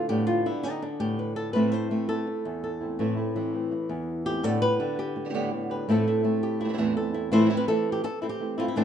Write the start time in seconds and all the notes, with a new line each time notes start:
Already playing: D3
0.10 A2 D3 G3 B3 G4
0.27 G3 B3 F4 G4
0.46 D3 G3 B3 E4 G4
0.63 G3 B3 D#4 G4
0.82 D4, muted nylon-string guitar stroke
1.00 A2 G3 B3 G4
1.19 B4
1.36 A4
1.53 A2 E3 A3 C4 E4 B4
1.72 A3 C4 E4 C5
1.90 E3 A3 C4 E4
2.08 A3 C4 E4 A4
2.27 muted nylon-string guitar stroke
2.45 E2
2.64 A4
2.81 A3 C4 E4
2.99 A2 E3 A3 C4 E4
3.17 A3 C4 E4
3.35 E3 A3 C4 E4
3.53 A3 C4 E4
3.71 muted nylon-string guitar stroke
3.89 E2
4.25 A3 C4 E4 G4
4.43 A2 D3 G3 B3 G4 A4
4.61 G3 B3 G4 B4
4.79 D3 G3 B3 G4
4.99 G4
5.16 muted nylon-string guitar stroke
5.25 D3 G3 B3 G4
5.29 D3 G3 B3 G4
5.34 A2 D3 G3 B3 G4
5.52 D3 G3 B3 G4
5.70 G3 B3 G4 B4
5.88 A2 E3 A3 C4 E4 A4
6.05 A3 C4 E4
6.23 A3 C4 E4
6.43 G4
6.60 E4, muted nylon-string guitar stroke
6.64 E3 A3 C4 E4
6.69 E3 A3 C4 E4
6.73 E3 A3 C4 E4
6.78 E2 A2 E3 A3 C4 E4
6.95 E3 A3 C4 E4 A4
7.13 A3 C4 E4
7.32 A2 E3 A3 C4 E4 C5
7.41 E3 A3 C4 E4
7.45 E3 A3 C4 E4
7.50 A2 E3 A3 C4 E4
7.57 B4
7.68 E3 A3 C4 E4 A4
7.92 G4
8.04 A4, muted nylon-string guitar stroke
8.22 A3 C4 E4
8.29 G4
8.40 E3 A3 C4 E4
8.58 A3 C4 E4 F4
8.68 E4
8.75 A2 E3 A3 C4 D4 E4